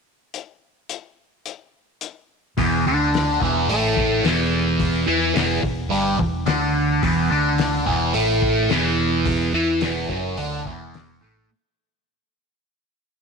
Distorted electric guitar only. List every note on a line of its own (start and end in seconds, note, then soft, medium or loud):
2.57 2.84 E2 medium
2.57 2.85 E3 medium
2.87 3.41 D3 medium
2.87 3.41 D4 medium
3.41 3.68 E2 medium
3.41 3.69 E3 loud
3.69 4.24 A2 medium
3.69 4.24 A3 loud
4.24 5.07 E2 medium
4.24 5.06 E3 medium
5.07 5.34 E3 medium
5.07 5.35 E4 medium
5.35 5.62 E2 medium
5.35 5.62 E3 medium
5.63 5.85 E2 medium
5.90 6.18 G2 medium
5.90 6.18 G3 loud
6.19 6.41 E2 medium
6.46 7.01 D3 medium
6.46 7.02 D4 loud
7.03 7.30 E2 medium
7.03 7.30 E3 medium
7.30 7.85 D3 medium
7.30 7.85 D4 loud
7.86 8.13 E2 medium
7.86 8.13 E3 loud
8.13 8.69 A2 medium
8.13 8.69 A3 loud
8.69 9.53 E2 medium
8.69 9.52 E3 loud
9.53 9.81 E3 medium
9.53 9.81 E4 medium
9.82 10.09 E2 medium
9.82 10.09 E3 loud
10.09 10.37 F#2 medium
10.09 10.37 F#3 medium
10.37 10.65 D3 medium
10.37 10.65 D4 medium
10.66 11.21 E2 medium
10.66 11.21 E3 medium
11.21 11.48 A2 medium
11.21 11.49 A3 medium